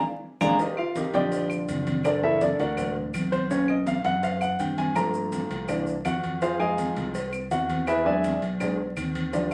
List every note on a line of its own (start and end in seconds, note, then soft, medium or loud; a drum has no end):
0.41 0.55 A#1 medium
0.41 0.53 G#3 loud
0.41 0.53 A#3 loud
0.41 0.53 D4 loud
0.41 0.53 F5 loud
0.41 0.53 G#5 loud
0.41 0.53 A#5 loud
0.41 low bongo loud
0.41 high conga loud
0.41 claves medium
0.41 maracas loud
0.59 0.77 D#4 medium
0.59 0.77 G4 medium
0.59 0.77 A#4 medium
0.59 0.77 D#5 medium
0.59 cowbell loud
0.59 high conga soft
0.59 maracas medium
0.77 0.95 F4 medium
0.77 0.95 F5 medium
0.77 high conga soft
0.77 claves medium
0.96 1.14 D#4 medium
0.96 1.13 G4 medium
0.96 1.14 A#4 medium
0.96 1.14 D#5 medium
0.96 cowbell medium
0.96 high conga loud
0.96 maracas medium
1.14 1.65 A#1 medium
1.14 2.01 D3 medium
1.14 2.01 F3 medium
1.14 2.01 G3 soft
1.14 1.48 G4 medium
1.14 1.48 D5 medium
1.14 1.48 D#5 medium
1.14 1.48 G5 loud
1.14 cowbell medium
1.14 high conga medium
1.14 maracas soft
1.32 cowbell medium
1.32 high conga soft
1.32 maracas medium
1.50 high conga soft
1.50 claves medium
1.50 maracas medium
1.68 2.53 F#1 loud
1.68 cowbell medium
1.68 high conga medium
1.68 maracas medium
1.87 cowbell medium
1.87 high conga medium
1.87 maracas soft
2.04 2.22 D4 medium
2.04 2.22 A4 medium
2.04 2.22 A#4 medium
2.04 2.23 D5 medium
2.04 cowbell loud
2.04 high conga soft
2.04 claves medium
2.04 maracas medium
2.23 3.46 E3 medium
2.23 3.46 A#3 soft
2.23 2.41 D4 medium
2.23 2.41 E4 medium
2.23 2.41 A4 medium
2.23 2.41 A#4 medium
2.23 2.41 E5 loud
2.23 high conga soft
2.41 2.59 D4 medium
2.41 2.59 A4 medium
2.41 2.58 A#4 medium
2.41 2.58 D5 medium
2.41 cowbell medium
2.41 high conga medium
2.41 maracas medium
2.59 3.10 D2 loud
2.59 2.93 F#4 medium
2.59 2.93 A#4 medium
2.59 2.93 D5 medium
2.59 2.93 F#5 medium
2.59 cowbell medium
2.59 high conga soft
2.59 maracas soft
2.77 cowbell loud
2.77 high conga soft
2.77 low conga medium
2.77 claves medium
2.77 maracas medium
2.96 high conga soft
2.96 low conga medium
3.14 3.99 B1 medium
3.14 cowbell medium
3.14 high conga medium
3.14 claves medium
3.14 maracas medium
3.32 3.50 C5 medium
3.32 cowbell medium
3.32 high conga medium
3.32 maracas soft
3.50 3.74 D#3 soft
3.50 3.75 A#3 medium
3.50 3.75 C#4 medium
3.50 3.68 C#5 medium
3.50 cowbell medium
3.50 maracas medium
3.68 3.87 D#5 medium
3.68 high conga soft
3.68 claves medium
3.86 4.05 F5 medium
3.86 cowbell medium
3.86 high conga loud
3.86 maracas medium
4.04 4.56 F#2 medium
4.04 4.22 F#5 loud
4.04 cowbell medium
4.04 high conga loud
4.04 maracas soft
4.23 4.41 F5 loud
4.23 cowbell loud
4.23 high conga soft
4.23 maracas medium
4.41 4.59 F#5 loud
4.41 high conga soft
4.41 claves medium
4.41 maracas medium
4.59 5.45 G2 loud
4.59 4.77 G5 medium
4.59 cowbell medium
4.59 high conga medium
4.59 maracas medium
4.78 4.96 G#5 loud
4.78 cowbell medium
4.78 high conga medium
4.78 maracas soft
4.95 5.65 F3 medium
4.95 5.65 A3 soft
4.95 5.65 A#3 medium
4.95 5.65 A#5 medium
4.95 cowbell loud
4.95 high conga soft
4.95 claves medium
4.95 maracas medium
5.14 high conga soft
5.14 maracas medium
5.32 cowbell medium
5.32 high conga medium
5.32 maracas medium
5.50 6.01 C2 medium
5.50 cowbell medium
5.50 high conga soft
5.50 maracas soft
5.68 5.93 E3 medium
5.68 5.93 A#3 medium
5.68 5.93 D4 medium
5.68 cowbell loud
5.68 high conga soft
5.68 low conga medium
5.68 claves medium
5.68 maracas medium
5.87 high conga soft
5.87 maracas medium
6.05 6.91 F2 loud
6.05 6.40 F#4 medium
6.05 6.39 F#5 medium
6.05 cowbell medium
6.05 high conga medium
6.05 claves medium
6.05 maracas medium
6.23 cowbell medium
6.23 high conga medium
6.23 maracas soft
6.42 6.60 F4 medium
6.42 6.58 G#4 medium
6.42 6.60 C5 medium
6.42 6.58 F5 medium
6.42 cowbell loud
6.42 high conga soft
6.42 maracas medium
6.59 7.11 F3 medium
6.59 7.12 G#3 soft
6.59 7.12 D#4 medium
6.59 6.94 G#4 medium
6.59 6.94 D#5 medium
6.59 6.94 F5 medium
6.59 6.94 G#5 loud
6.59 high conga soft
6.59 claves medium
6.78 cowbell medium
6.78 high conga medium
6.78 maracas medium
6.96 7.47 C2 medium
6.96 cowbell medium
6.96 high conga medium
6.96 maracas soft
7.15 cowbell loud
7.15 high conga soft
7.15 maracas medium
7.33 high conga soft
7.33 claves medium
7.33 maracas medium
7.51 8.36 E2 loud
7.51 7.85 F#4 medium
7.51 7.85 F#5 medium
7.51 cowbell medium
7.51 high conga medium
7.51 maracas medium
7.69 cowbell medium
7.69 high conga loud
7.69 maracas soft
7.87 8.05 E4 medium
7.87 8.05 G#4 medium
7.87 8.05 B4 medium
7.87 8.05 E5 medium
7.87 cowbell loud
7.87 high conga soft
7.87 claves medium
7.87 maracas medium
8.05 8.30 F#3 medium
8.05 8.30 G#3 medium
8.05 8.30 D4 medium
8.05 8.40 G#4 medium
8.05 8.40 D5 medium
8.05 8.40 E5 medium
8.05 8.40 G#5 loud
8.05 high conga soft
8.24 cowbell medium
8.24 high conga loud
8.24 maracas medium
8.42 8.93 B1 medium
8.42 cowbell medium
8.42 high conga soft
8.42 maracas soft
8.60 8.77 F#3 medium
8.60 8.77 G#3 medium
8.60 8.77 D4 medium
8.60 cowbell loud
8.60 high conga soft
8.60 low conga medium
8.60 claves medium
8.60 maracas medium
8.79 high conga soft
8.97 9.54 D#2 loud
8.97 cowbell medium
8.97 high conga medium
8.97 claves medium
8.97 maracas medium
9.15 cowbell medium
9.15 high conga medium
9.15 maracas soft
9.33 9.54 F3 medium
9.33 9.54 G3 medium
9.33 9.54 D4 medium
9.33 cowbell loud
9.33 high conga soft
9.33 maracas medium